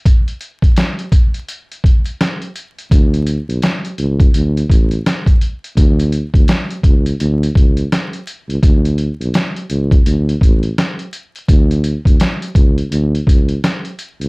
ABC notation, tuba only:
X:1
M:4/4
L:1/16
Q:"Swing 16ths" 1/4=84
K:Amix
V:1 name="Tuba" clef=bass
z16 | D,,3 B,,, z2 C,,2 D,,2 A,,,2 z4 | D,,3 D,, z2 C,,2 D,,2 C,,2 z3 C,, | D,,3 B,,, z2 C,,2 D,,2 A,,,2 z4 |
D,,3 D,, z2 C,,2 D,,2 C,,2 z3 C,, |]